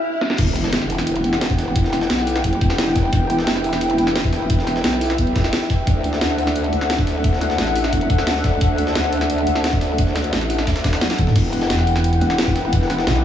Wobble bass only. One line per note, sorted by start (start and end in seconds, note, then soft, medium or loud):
0.38 0.71 E1 loud
0.73 1.23 E1 loud
1.24 1.74 E1 loud
1.76 2.09 E1 loud
2.10 2.43 B1 loud
2.44 2.60 F#1 medium
2.61 3.11 E1 medium
3.13 3.46 E1 loud
3.47 3.97 E1 loud
3.98 4.49 E1 medium
4.50 4.83 E1 loud
4.84 5.17 B1 loud
5.19 5.51 B1 loud
5.87 6.20 D2 loud
6.21 6.71 D2 loud
6.73 7.23 D2 medium
7.24 7.57 D2 loud
7.58 7.91 A1 loud
7.93 8.09 E1 loud
8.10 8.60 D2 loud
8.61 8.94 D2 loud
8.96 9.46 D2 loud
9.47 9.97 D2 medium
9.98 10.31 D2 loud
10.33 10.66 A1 loud
10.67 11.00 D2 loud
11.36 11.69 E1 loud
12.21 12.71 E1 medium
12.73 13.06 E1 loud